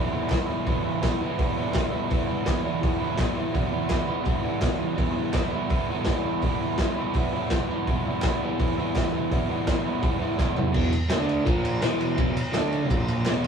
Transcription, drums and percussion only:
0.29 kick, snare, clap, open hi-hat
0.67 kick, open hi-hat
1.03 kick, snare, clap, open hi-hat
1.39 kick, open hi-hat
1.74 kick, snare, clap, open hi-hat
2.10 kick, open hi-hat
2.46 kick, snare, clap, open hi-hat
2.83 kick, open hi-hat
3.18 kick, snare, clap, open hi-hat
3.55 kick, open hi-hat
3.89 kick, snare, clap, open hi-hat
4.25 kick, open hi-hat
4.61 kick, snare, clap, open hi-hat
4.98 kick, open hi-hat
5.33 kick, snare, clap, open hi-hat
5.70 kick, open hi-hat
6.05 kick, snare, clap, open hi-hat
6.42 kick, open hi-hat
6.78 kick, snare, clap, open hi-hat
7.14 kick, open hi-hat
7.50 kick, snare, clap, open hi-hat
7.87 kick, open hi-hat
8.22 kick, snare, clap, open hi-hat
8.59 kick, open hi-hat
8.95 kick, snare, clap, open hi-hat
9.31 kick, open hi-hat
9.67 kick, snare, clap, open hi-hat
10.03 kick, open hi-hat
10.38 kick, snare, clap
10.57 floor tom
10.74 kick, crash
10.93 ride
11.10 snare, clap, ride
11.29 ride
11.46 kick, ride
11.65 ride
11.82 snare, clap, ride
12.01 ride
12.18 kick, ride
12.37 ride
12.54 snare, clap, ride
12.72 ride
12.90 kick, ride
13.08 ride
13.25 snare, clap, ride
13.44 ride

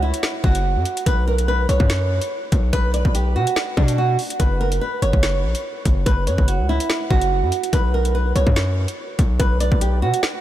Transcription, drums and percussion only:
0.14 closed hi-hat
0.23 snare
0.44 kick
0.55 closed hi-hat
0.85 closed hi-hat
0.97 closed hi-hat
1.06 kick, closed hi-hat
1.38 closed hi-hat
1.69 closed hi-hat
1.80 kick
1.90 snare, closed hi-hat
2.22 closed hi-hat
2.52 kick, closed hi-hat
2.73 kick, closed hi-hat
2.94 closed hi-hat
3.05 kick
3.15 closed hi-hat
3.47 closed hi-hat
3.56 snare
3.77 kick
3.88 closed hi-hat
4.19 open hi-hat
4.30 closed hi-hat
4.40 kick, closed hi-hat
4.72 closed hi-hat
5.02 closed hi-hat
5.13 kick
5.23 snare, closed hi-hat
5.55 closed hi-hat
5.85 kick, closed hi-hat
6.06 kick, closed hi-hat
6.27 closed hi-hat
6.38 kick
6.48 closed hi-hat
6.80 closed hi-hat
6.90 snare
7.10 kick
7.21 closed hi-hat
7.52 closed hi-hat
7.63 closed hi-hat
7.73 kick, closed hi-hat
8.05 closed hi-hat
8.36 closed hi-hat
8.47 kick
8.56 snare, closed hi-hat
8.88 closed hi-hat
9.19 kick, closed hi-hat
9.40 kick, closed hi-hat
9.60 closed hi-hat
9.72 kick
9.81 closed hi-hat
10.14 closed hi-hat
10.23 snare

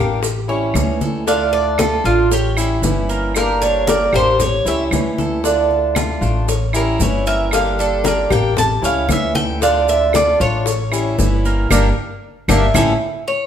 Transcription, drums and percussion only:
0.23 high bongo, high conga, maracas
0.49 high bongo, high conga
0.74 high bongo, low bongo, high conga, claves, maracas
1.01 high conga, maracas
1.28 high bongo, high conga, maracas
1.54 high bongo, high conga
1.78 high bongo, high conga, claves, maracas
2.05 high bongo, high conga, maracas
2.31 high bongo, high conga, maracas
2.57 high bongo, high conga, claves, maracas
2.83 high bongo, low bongo, high conga, maracas
3.10 maracas
3.35 high bongo, high conga, claves, maracas
3.62 high bongo, high conga, maracas
3.87 high bongo, high conga, maracas
4.13 high bongo, high conga, low conga, claves, maracas
4.40 high bongo, high conga, low conga, maracas
4.66 high bongo, high conga, maracas
4.91 high bongo, low bongo, high conga, claves, maracas
5.18 high conga, maracas
5.44 high bongo, high conga, maracas
5.71 high bongo, high conga
5.95 high bongo, high conga, claves, maracas
6.22 high bongo, high conga, maracas
6.49 high bongo, high conga, maracas
6.73 high bongo, high conga, claves, maracas
7.00 high bongo, low bongo, high conga, maracas
7.26 maracas
7.51 high bongo, high conga, claves, maracas
7.78 high bongo, high conga, maracas
8.04 high bongo, high conga, maracas
8.30 high bongo, high conga, low conga, claves, maracas
8.57 high bongo, high conga, low conga, maracas
8.83 high bongo, high conga, maracas
9.09 high bongo, low bongo, high conga, claves, maracas
9.35 high conga, maracas
9.62 high bongo, high conga, maracas
9.88 high bongo, high conga, maracas
10.13 high bongo, high conga, claves, maracas
10.40 high bongo, high conga, maracas
10.66 high bongo, high conga, maracas
10.92 high bongo, high conga, claves, maracas
11.19 high bongo, low bongo, high conga, maracas
11.45 maracas
11.70 low bongo, high conga, claves, maracas
12.49 low bongo, high conga, claves, maracas
12.74 low bongo, high conga, claves, maracas

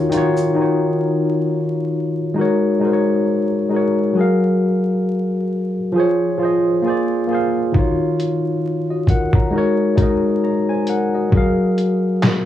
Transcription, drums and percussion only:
0.12 closed hi-hat, shaker
0.37 shaker
7.74 kick
8.20 closed hi-hat
9.07 kick, closed hi-hat
9.33 kick
9.97 kick, closed hi-hat
10.87 closed hi-hat
11.32 kick
11.78 closed hi-hat
12.23 snare, clap

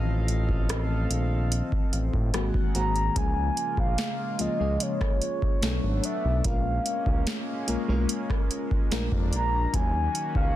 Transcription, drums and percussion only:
0.28 closed hi-hat
0.49 kick
0.69 cross-stick, closed hi-hat
1.11 closed hi-hat
1.52 closed hi-hat
1.72 kick
1.93 closed hi-hat
2.14 kick
2.34 cross-stick, closed hi-hat
2.54 kick
2.75 closed hi-hat
2.96 closed hi-hat
3.16 kick, closed hi-hat
3.57 closed hi-hat
3.77 kick
3.98 snare, closed hi-hat
4.39 closed hi-hat
4.80 closed hi-hat
5.01 kick, cross-stick
5.22 closed hi-hat
5.42 kick
5.62 snare, closed hi-hat
6.04 closed hi-hat
6.44 kick, closed hi-hat
6.86 closed hi-hat
7.06 kick
7.27 snare, closed hi-hat
7.68 closed hi-hat
8.09 closed hi-hat
8.30 kick, cross-stick
8.51 closed hi-hat
8.71 kick
8.92 snare, closed hi-hat
9.12 kick
9.33 closed hi-hat
9.74 kick, closed hi-hat
10.15 closed hi-hat
10.35 kick

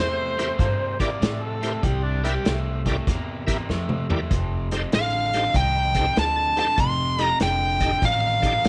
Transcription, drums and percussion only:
0.39 snare, closed hi-hat
0.59 kick, snare, closed hi-hat
1.00 kick, snare, closed hi-hat
1.22 snare, closed hi-hat
1.63 snare, closed hi-hat
1.83 kick, snare, closed hi-hat
2.25 snare, closed hi-hat
2.45 snare, closed hi-hat
2.86 kick, snare, closed hi-hat
3.07 kick, snare, closed hi-hat
3.48 kick, snare, closed hi-hat
3.70 snare
3.89 mid tom
4.10 floor tom
4.31 kick, snare, closed hi-hat
4.71 snare, closed hi-hat
4.92 snare, closed hi-hat
5.33 snare, closed hi-hat
5.54 kick, snare, closed hi-hat
5.94 kick, snare, closed hi-hat
6.16 snare, closed hi-hat
6.57 snare, closed hi-hat
6.77 kick, snare, closed hi-hat
7.18 snare, closed hi-hat
7.40 snare, closed hi-hat
7.80 kick, snare, closed hi-hat
8.02 kick, snare, closed hi-hat
8.43 kick, snare, closed hi-hat
8.65 snare, closed hi-hat

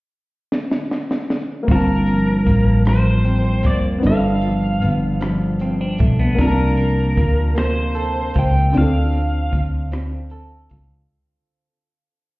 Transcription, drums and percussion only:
0.52 snare
0.71 snare
0.91 snare
1.11 snare
1.30 snare
1.68 kick, closed hi-hat
2.06 closed hi-hat
2.47 kick, closed hi-hat
2.85 cross-stick, closed hi-hat
3.24 closed hi-hat
3.63 kick, closed hi-hat
4.03 closed hi-hat
4.41 closed hi-hat
4.82 closed hi-hat
5.21 cross-stick, closed hi-hat
5.60 closed hi-hat
5.98 kick, closed hi-hat
6.39 kick, closed hi-hat
6.77 closed hi-hat
7.17 kick, closed hi-hat
7.56 cross-stick, closed hi-hat
7.95 closed hi-hat
8.34 kick, closed hi-hat
8.74 closed hi-hat
9.12 closed hi-hat
9.53 kick, closed hi-hat
9.92 cross-stick, closed hi-hat
10.30 closed hi-hat
10.70 kick, closed hi-hat

